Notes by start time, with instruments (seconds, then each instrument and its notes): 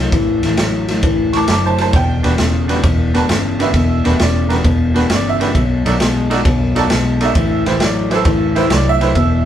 Already playing: clean electric guitar A2 F#3, upright piano E6
0.12 fingered electric bass A1, clean electric guitar A2 E3, kick, snare, ride
0.43 fingered electric bass A1, clean electric guitar A2 E3, snare, ride
0.57 fingered electric bass A1, clean electric guitar A2 F#3, snare, ride
0.88 clean electric guitar A2 F#3, snare, ride
1.03 fingered electric bass A1, clean electric guitar A2 E3, kick, ride
1.33 clean electric guitar A2 E3, upright piano A5 C#6 D6, snare, ride
1.48 fingered electric bass F#1, clean electric guitar A2 F#3, upright piano A5, snare, ride
1.52 upright piano D6
1.66 upright piano C5 A5
1.78 clean electric guitar A2 F#3, upright piano C5 A5, snare, ride
1.93 fingered electric bass E1, clean electric guitar E2 B2, upright piano G5, kick, snare, ride
2.23 fingered electric bass E1, clean electric guitar E2 B2, upright piano D4 F#4 G4 B4, snare, ride
2.38 fingered electric bass E1, clean electric guitar E2 C#3, snare, ride
2.68 clean electric guitar E2 C#3, upright piano D4 F#4 G4 B4, snare, ride
2.83 fingered electric bass E1, clean electric guitar E2 B2, kick, ride
3.14 clean electric guitar E2 B2, upright piano D4 F#4 G4 B4 A5, snare, ride
3.29 fingered electric bass G1, clean electric guitar E2 C#3, snare, ride
3.59 clean electric guitar E2 C#3, upright piano D4 F#4 G4 B4, snare, ride
3.63 upright piano E5
3.74 fingered electric bass E1, clean electric guitar E2 B2, kick, snare, ride
4.04 fingered electric bass E1, clean electric guitar E2 B2, upright piano D4 F#4 G4 B4, snare, ride
4.19 fingered electric bass E1, clean electric guitar E2 C#3, upright piano D5, snare, ride
4.49 clean electric guitar E2 C#3, upright piano D4 F#4 G4 A#4 B4, snare, ride
4.63 fingered electric bass E1, clean electric guitar E2 B2, kick, ride
4.94 clean electric guitar E2 B2, upright piano D4 F#4 G4 B4, snare, ride
5.10 fingered electric bass G1, clean electric guitar E2 C#3, upright piano C#5, snare, ride
5.14 upright piano D5
5.29 upright piano E5
5.40 clean electric guitar E2 C#3, upright piano D4 F#4 G4 B4, snare, ride
5.55 fingered electric bass B1, clean electric guitar B2 F#3, kick, ride
5.85 fingered electric bass B1, clean electric guitar B2 F#3, upright piano D#4 F#4 A4 D5, snare, ride
6.00 fingered electric bass B1, clean electric guitar B2 G#3, snare, ride
6.30 clean electric guitar B2 G#3, upright piano D#4 F#4 A4 D5, snare, ride
6.45 fingered electric bass B1, clean electric guitar B2 F#3, kick, ride
6.75 clean electric guitar B2 F#3, upright piano D#4 F#4 A4 D5 A5, snare, ride
6.90 fingered electric bass B1, clean electric guitar B2 G#3, snare, ride
7.21 clean electric guitar B2 G#3, upright piano D#4 F#4 A4 D5, snare, ride
7.25 upright piano E5
7.35 fingered electric bass A1, clean electric guitar A2 E3, kick, ride
7.66 fingered electric bass A1, clean electric guitar A2 E3, upright piano E4 G4 B4 C5, snare, ride
7.80 fingered electric bass A1, clean electric guitar A2 F#3, snare, ride
7.84 upright piano D5
8.10 clean electric guitar A2 F#3, upright piano E4 G4 G#4 B4 C5, snare, ride
8.15 upright piano A4
8.25 fingered electric bass A1, clean electric guitar A2 E3, kick, ride
8.55 clean electric guitar A2 E3, upright piano E4 G4 B4 C5, snare, ride
8.70 fingered electric bass C2, clean electric guitar A2 F#3, upright piano C#5, snare, ride
8.75 upright piano D5
8.89 upright piano E5
9.01 clean electric guitar A2 F#3, upright piano E4 G4 B4 C5, snare, ride
9.15 fingered electric bass E1, clean electric guitar E2 B2, kick, ride